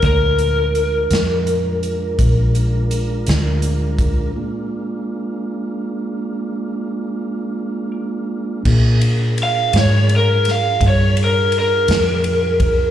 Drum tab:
CC |------------|------------|x-----------|
RD |------------|------------|-xxxxxxxxxxx|
HH |xxxxxxxxxxxx|------------|------------|
SD |---o-----o--|------------|---o-o---o--|
BD |o-----o----o|------------|o-----o----o|